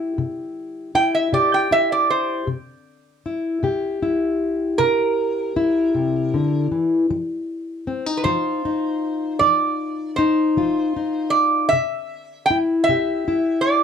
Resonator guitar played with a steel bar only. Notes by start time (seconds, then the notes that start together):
0.95 G5
1.15 E5
1.34 D5
1.54 G5
1.72 E5
1.92 D5
2.10 C5
4.78 A#4
8.17 B4
8.24 C5
9.39 D5
10.16 C5
11.30 D5
11.69 E5
12.46 G5
12.84 E5
13.61 D5